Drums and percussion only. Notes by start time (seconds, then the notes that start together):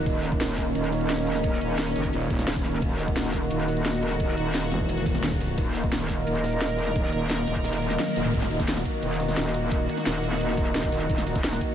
0.06 kick, closed hi-hat, ride
0.23 snare, closed hi-hat, ride
0.32 kick
0.41 snare, closed hi-hat, ride
0.58 kick, snare, closed hi-hat, ride
0.75 closed hi-hat, ride
0.84 closed hi-hat
0.92 snare, closed hi-hat, ride
1.01 closed hi-hat
1.09 snare, closed hi-hat, ride
1.18 snare
1.27 closed hi-hat, ride
1.35 snare
1.44 kick, closed hi-hat, ride
1.61 closed hi-hat, ride
1.78 snare, closed hi-hat, ride
1.96 snare, open hi-hat, ride
2.04 kick
2.13 closed hi-hat, ride
2.22 snare, closed hi-hat
2.30 kick, snare, closed hi-hat, ride
2.39 snare, closed hi-hat
2.47 snare, closed hi-hat, ride
2.56 kick, snare
2.64 snare, closed hi-hat, ride
2.82 kick, closed hi-hat, ride
2.99 snare, closed hi-hat, ride
3.08 kick
3.16 snare, closed hi-hat, ride
3.34 kick, snare, closed hi-hat, ride
3.50 closed hi-hat, ride
3.60 closed hi-hat
3.68 snare, closed hi-hat, ride
3.77 closed hi-hat
3.85 snare, closed hi-hat, ride
3.94 snare
4.03 closed hi-hat, ride
4.11 snare
4.20 kick, closed hi-hat, ride
4.37 closed hi-hat, ride
4.54 snare, closed hi-hat, ride
4.72 snare, open hi-hat, ride
4.80 kick
4.89 closed hi-hat, ride
4.97 snare, closed hi-hat
5.06 kick, snare, closed hi-hat, ride
5.15 snare, closed hi-hat
5.23 snare, closed hi-hat, ride
5.32 kick, snare
5.40 snare, closed hi-hat, ride
5.58 kick, closed hi-hat, ride
5.75 snare, closed hi-hat, ride
5.84 kick
5.92 snare, closed hi-hat, ride
6.09 kick, snare, closed hi-hat, ride
6.27 closed hi-hat, ride
6.35 closed hi-hat
6.44 snare, closed hi-hat, ride
6.53 closed hi-hat
6.61 snare, closed hi-hat, ride
6.70 snare
6.79 closed hi-hat, ride
6.87 snare
6.96 kick, closed hi-hat, ride
7.12 closed hi-hat, ride
7.29 snare, closed hi-hat, ride
7.47 snare, open hi-hat, ride
7.56 kick, closed hi-hat
7.64 snare, closed hi-hat, ride
7.72 snare, closed hi-hat, ride
7.82 snare, closed hi-hat, ride
7.91 snare, closed hi-hat
7.99 snare, closed hi-hat, high tom, ride
8.08 snare, high tom
8.16 snare, closed hi-hat, ride
8.25 mid tom
8.34 kick, closed hi-hat, crash, ride
8.42 snare
8.51 snare, closed hi-hat, ride
8.60 kick, snare, closed hi-hat
8.68 snare, closed hi-hat, ride
8.77 snare
8.85 kick, open hi-hat, ride
9.02 closed hi-hat, ride
9.20 snare, closed hi-hat, ride
9.28 snare
9.37 snare, closed hi-hat, ride
9.46 snare
9.54 open hi-hat, ride
9.71 kick, closed hi-hat, ride
9.89 closed hi-hat, ride
9.98 snare, closed hi-hat
10.05 snare, closed hi-hat, ride
10.23 open hi-hat, ride
10.32 snare
10.41 closed hi-hat, ride
10.50 snare
10.57 kick, snare, closed hi-hat, ride
10.75 snare, closed hi-hat, ride
10.84 kick, snare
10.92 snare, open hi-hat, ride
11.10 kick, closed hi-hat, ride
11.18 snare
11.26 snare, closed hi-hat, ride
11.35 kick, snare, closed hi-hat
11.44 snare, closed hi-hat, ride
11.53 snare
11.61 kick, open hi-hat, ride